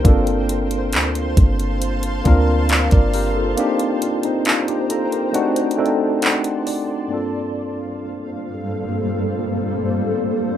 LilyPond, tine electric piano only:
\new Staff \with { instrumentName = "Tine electric piano" } { \time 4/4 \key g \minor \tempo 4 = 68 << { r2. <d'' f''>16 <bes' d''>16 <g' bes'>16 <f' a'>16~ | <f' a'>16 r16 <d' f'>16 <c' ees'>16 <d' f'>16 <ees' g'>16 <f' a' bes''>16 <g' bes'>16 fis''8 g''8 fis''8 d''8 | r1 | } \\ { <bes c' d' f' a'>2 r8 <bes c' d' f' bes'>4. | <bes c' d' ees' g'>2 <a c' d' ees' fis'>8 <a c' d' ees' a'>4. | <g, bes c' d' f' a'>1 | } >> }